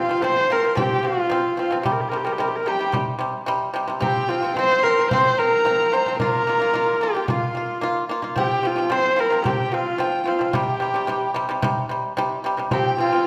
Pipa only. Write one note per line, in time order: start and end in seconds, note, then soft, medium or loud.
0.09 0.20 F3 medium
0.09 0.21 C4 medium
0.22 0.44 F3 medium
0.22 0.45 C4 medium
0.50 0.61 F3 medium
0.50 0.61 C4 medium
0.63 0.74 F3 medium
0.63 0.75 C4 medium
0.75 0.98 F3 medium
0.75 0.99 C4 loud
1.03 1.25 F3 medium
1.03 1.26 C4 medium
1.30 1.52 F3 medium
1.30 1.53 C4 loud
1.57 1.68 F3 medium
1.57 1.69 C4 medium
1.71 1.82 F3 medium
1.71 1.83 C4 medium
1.83 2.06 C3 medium
1.83 2.07 G3 loud
2.12 2.23 C3 medium
2.12 2.24 G3 medium
2.25 2.36 C3 medium
2.25 2.37 G3 medium
2.38 2.60 C3 medium
2.38 2.61 G3 loud
2.66 2.77 C3 medium
2.66 2.78 G3 medium
2.79 2.90 C3 medium
2.79 2.91 G3 medium
2.92 3.15 C3 medium
2.92 3.15 G3 loud
3.19 3.41 C3 medium
3.19 3.42 G3 medium
3.46 3.69 C3 loud
3.46 3.70 G3 loud
3.74 3.85 C3 medium
3.74 3.86 G3 loud
3.88 3.99 C3 medium
3.88 4.00 G3 medium
4.00 4.23 F3 loud
4.00 4.24 C4 loud
4.29 4.40 F3 medium
4.29 4.40 C4 medium
4.42 4.53 F3 medium
4.42 4.54 C4 medium
4.57 4.78 F3 medium
4.57 4.79 C4 loud
4.84 4.94 F3 medium
4.84 4.95 C4 medium
4.97 5.08 F3 medium
4.97 5.09 C4 medium
5.11 5.33 F3 medium
5.11 5.34 C4 loud
5.38 5.59 F3 medium
5.38 5.60 C4 medium
5.65 5.86 F3 medium
5.65 5.87 C4 medium
5.92 6.03 F3 medium
5.92 6.04 C4 medium
6.06 6.17 F3 medium
6.06 6.18 C4 medium
6.20 6.41 A#3 medium
6.20 6.42 F4 loud
6.47 6.58 A#3 medium
6.47 6.58 F4 medium
6.60 6.71 A#3 medium
6.60 6.72 F4 medium
6.74 6.95 A#3 medium
6.74 6.96 F4 medium
7.01 7.12 A#3 medium
7.01 7.13 F4 medium
7.15 7.25 A#3 medium
7.15 7.26 F4 medium
7.28 7.50 A#3 medium
7.28 7.51 F4 medium
7.55 7.76 A#3 medium
7.55 7.78 F4 medium
7.81 8.03 A#3 medium
7.81 8.04 F4 loud
8.09 8.20 A#3 medium
8.09 8.21 F4 medium
8.22 8.33 A#3 medium
8.22 8.34 F4 medium
8.36 8.58 F3 medium
8.36 8.59 C4 loud
8.63 8.74 F3 medium
8.63 8.75 C4 medium
8.76 8.87 F3 medium
8.76 8.88 C4 medium
8.90 9.12 F3 medium
8.90 9.13 C4 loud
9.16 9.28 F3 medium
9.16 9.29 C4 medium
9.30 9.42 F3 medium
9.30 9.43 C4 medium
9.44 9.66 F3 medium
9.44 9.67 C4 loud
9.72 9.94 F3 medium
9.72 9.95 C4 medium
9.98 10.21 F3 medium
9.98 10.21 C4 loud
10.26 10.37 F3 medium
10.26 10.38 C4 medium
10.39 10.50 F3 medium
10.39 10.51 C4 medium
10.53 10.75 C3 medium
10.53 10.76 G3 loud
10.80 10.91 C3 medium
10.80 10.92 G3 medium
10.94 11.05 C3 medium
10.94 11.06 G3 medium
11.07 11.29 C3 medium
11.07 11.30 G3 medium
11.34 11.46 C3 medium
11.34 11.47 G3 loud
11.49 11.60 C3 medium
11.49 11.61 G3 medium
11.62 11.84 C3 loud
11.62 11.85 G3 loud
11.89 12.11 C3 medium
11.89 12.12 G3 medium
12.17 12.39 C3 loud
12.17 12.40 G3 loud
12.44 12.55 C3 medium
12.44 12.56 G3 loud
12.57 12.68 C3 medium
12.57 12.69 G3 medium
12.72 12.93 F3 medium
12.72 12.94 C4 loud
12.98 13.10 F3 medium
12.98 13.11 C4 medium
13.12 13.23 F3 medium
13.12 13.24 C4 medium